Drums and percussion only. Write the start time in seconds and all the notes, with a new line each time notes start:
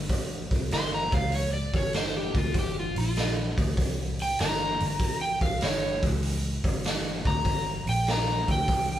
0.09 kick, open hi-hat
0.51 kick, open hi-hat
0.71 snare, open hi-hat
1.12 kick, open hi-hat
1.32 open hi-hat
1.74 kick, open hi-hat
1.93 snare, open hi-hat
2.35 kick, open hi-hat
2.54 kick, open hi-hat
2.96 open hi-hat
3.16 snare, open hi-hat
3.58 kick, open hi-hat
3.77 kick, open hi-hat
4.19 open hi-hat
4.39 snare, open hi-hat
4.80 open hi-hat
5.00 kick, open hi-hat
5.41 kick, open hi-hat
5.61 snare, open hi-hat
6.03 kick, open hi-hat
6.23 open hi-hat
6.64 kick, open hi-hat
6.84 snare, open hi-hat
7.25 kick, open hi-hat
7.45 kick, open hi-hat
7.87 open hi-hat
8.07 snare, open hi-hat
8.48 kick, open hi-hat
8.68 kick, open hi-hat